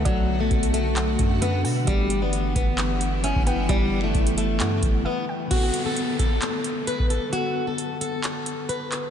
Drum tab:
CC |----------------|----------------|----------------|x---------------|
HH |x---xxx-x-x-x-o-|x-x-x-x-x-x-x-x-|x---xxx-x-x-----|x-x-x-x-x-x-x-x-|
CP |--------x-------|--------x-------|--------x-------|--------x-------|
BD |o---o-----o-----|o-----o------o--|o---o-----o-----|o-----o------o--|

CC |----------------|
HH |x---x-x-x-x-x-x-|
CP |--------x-----x-|
BD |----------------|